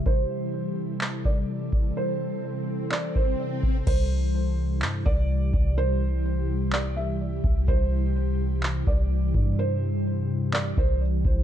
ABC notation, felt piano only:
X:1
M:4/4
L:1/8
Q:1/4=126
K:C
V:1 name="Felt piano"
c4- c d3 | c4 d c z2 | c4- c d3 | c4 d e3 |
c4- c d3 | c4 d c z2 |]